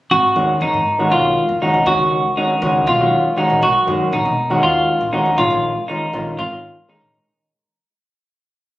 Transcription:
0.11 0.22 G#1 medium
0.11 0.55 F#4 medium
0.36 0.58 D#2 medium
0.36 0.78 D#3 medium
0.36 0.78 G#3 medium
0.36 0.78 C#4 medium
0.36 0.78 F#4 medium
0.61 0.72 F#1 medium
0.61 1.06 D#4 medium
0.74 1.06 G#2 medium
0.99 1.41 D#3 medium
0.99 1.41 G#3 medium
0.99 1.41 C#4 medium
0.99 1.41 F#4 medium
1.11 1.33 B1 medium
1.11 1.56 F4 medium
1.49 1.60 F#1 medium
1.62 1.79 D#3 medium
1.62 1.79 G#3 medium
1.62 1.79 C#4 medium
1.62 1.84 D#4 medium
1.62 1.79 F#4 medium
1.74 1.85 C2 medium
1.86 1.97 C#2 loud
1.86 2.20 D#3 medium
1.86 2.20 G#3 medium
1.86 2.20 C#4 medium
1.86 2.31 F#4 medium
1.86 2.20 F#4 medium
1.99 2.21 C#2 medium
2.37 2.54 D#3 medium
2.37 2.54 G#3 medium
2.37 2.54 C#4 medium
2.37 2.81 D#4 medium
2.37 2.54 F#4 medium
2.62 2.84 C#2 loud
2.62 2.88 D#3 medium
2.62 2.88 G#3 medium
2.62 2.87 C#4 medium
2.62 2.87 F#4 medium
2.87 3.09 B1 loud
2.87 3.31 F4 medium
2.99 3.25 D#3 medium
2.99 3.25 G#3 medium
2.99 3.25 C#4 medium
2.99 3.25 F#4 medium
3.37 3.62 D#3 medium
3.37 3.62 G#3 medium
3.37 3.62 C#4 medium
3.37 3.59 D#4 medium
3.37 3.62 F#4 loud
3.50 3.61 A#1 medium
3.62 3.73 B1 loud
3.62 4.07 F#4 medium
3.87 4.09 F#2 medium
3.87 4.29 D#3 medium
3.87 4.29 G#3 medium
3.87 4.29 C#4 medium
3.87 4.29 F#4 loud
4.13 4.23 A#1 medium
4.13 4.57 D#4 medium
4.25 4.58 B2 medium
4.50 4.92 D#3 medium
4.50 4.92 G#3 medium
4.50 4.92 C#4 medium
4.50 4.92 F#4 loud
4.63 4.85 D#2 medium
4.63 5.07 F4 medium
5.01 5.11 A#1 medium
5.12 5.30 D#3 medium
5.12 5.30 G#3 medium
5.12 5.30 C#4 medium
5.12 5.35 D#4 medium
5.12 5.30 F#4 medium
5.26 5.36 D#2 medium
5.38 5.49 A#1 loud
5.38 5.72 D#3 medium
5.38 5.72 G#3 medium
5.38 5.72 C#4 medium
5.38 5.82 F4 medium
5.38 5.72 F4 medium
5.50 5.72 A#1 medium
5.88 6.05 D#3 medium
5.88 6.05 G#3 medium
5.88 6.05 C#4 medium
5.88 6.32 D#4 medium
5.88 6.05 F4 medium
6.13 6.35 A#1 medium
6.13 6.39 D#3 medium
6.13 6.39 G#3 medium
6.13 6.39 C#4 medium
6.13 6.39 F4 medium
6.39 6.60 G#1 medium
6.39 6.83 F4 medium
6.51 6.76 D#3 medium
6.51 6.76 G#3 medium
6.51 6.77 C#4 medium
6.51 6.76 F4 medium
6.89 7.14 D#3 medium
6.89 7.14 G#3 medium
6.89 7.14 C#4 medium
6.89 7.11 D#4 medium
6.89 7.14 G#4 medium
7.02 7.12 A#1 medium

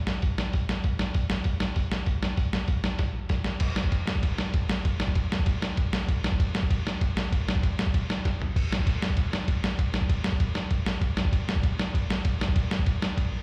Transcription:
0.07 snare loud
0.22 kick loud
0.22 open hi-hat medium
0.38 snare loud
0.53 kick medium
0.53 open hi-hat medium
0.69 snare loud
0.84 kick loud
0.84 open hi-hat medium
0.99 snare loud
1.14 kick loud
1.14 open hi-hat medium
1.30 snare loud
1.44 kick loud
1.44 open hi-hat medium
1.60 snare loud
1.76 kick loud
1.76 open hi-hat medium
1.92 snare loud
2.06 kick loud
2.06 open hi-hat medium
2.23 snare loud
2.37 kick loud
2.37 open hi-hat medium
2.53 snare loud
2.68 kick loud
2.68 open hi-hat medium
2.84 snare loud
2.99 kick loud
2.99 snare medium
2.99 open hi-hat medium
3.29 kick loud
3.29 snare medium
3.29 open hi-hat medium
3.44 snare medium
3.60 kick loud
3.60 crash loud
3.60 ride medium
3.76 snare loud
3.84 kick medium
3.92 kick loud
3.92 ride medium
4.07 snare loud
4.15 kick medium
4.23 kick loud
4.23 ride medium
4.38 snare loud
4.54 kick loud
4.54 ride medium
4.70 snare loud
4.85 kick loud
4.85 ride medium
5.00 snare loud
5.08 kick medium
5.15 kick medium
5.15 ride medium
5.32 snare loud
5.39 kick medium
5.46 kick loud
5.46 ride medium
5.62 snare loud
5.77 kick loud
5.77 ride medium
5.93 snare loud
6.09 kick loud
6.09 ride medium
6.24 snare loud
6.32 kick loud
6.40 kick loud
6.40 ride medium
6.55 snare loud
6.63 kick medium
6.70 kick medium
6.70 ride medium
6.87 snare loud
7.01 kick loud
7.01 ride medium
7.17 snare loud
7.32 kick loud
7.32 ride medium
7.49 snare loud
7.55 kick loud
7.63 kick loud
7.63 ride medium
7.79 snare loud
7.86 kick medium
7.94 kick medium
7.94 ride medium
8.10 snare loud
8.25 kick loud
8.25 snare medium
8.25 ride medium
8.42 floor tom medium
8.56 kick loud
8.56 crash loud
8.72 snare loud
8.79 kick medium
8.87 kick loud
8.87 ride medium
9.02 snare loud
9.10 kick medium
9.17 kick medium
9.17 ride medium
9.33 snare loud
9.48 kick loud
9.48 ride medium
9.64 snare loud
9.79 kick loud
9.79 ride medium
9.94 snare loud
10.02 kick medium
10.09 kick loud
10.09 ride medium
10.24 snare loud
10.32 kick medium
10.40 kick medium
10.40 ride medium
10.55 snare loud
10.71 kick loud
10.71 ride medium
10.86 snare loud
11.01 kick loud
11.01 ride medium
11.17 snare loud
11.25 kick medium
11.32 kick loud
11.32 ride medium
11.49 snare loud
11.56 kick medium
11.63 kick loud
11.63 ride medium
11.79 snare loud
11.94 kick loud
11.94 ride medium
12.10 snare loud
12.25 kick loud
12.25 ride medium
12.41 snare loud
12.48 kick loud
12.56 kick loud
12.56 ride medium
12.71 snare loud
12.79 kick medium
12.86 kick medium
12.86 ride medium
13.02 snare loud
13.17 kick loud
13.17 ride medium

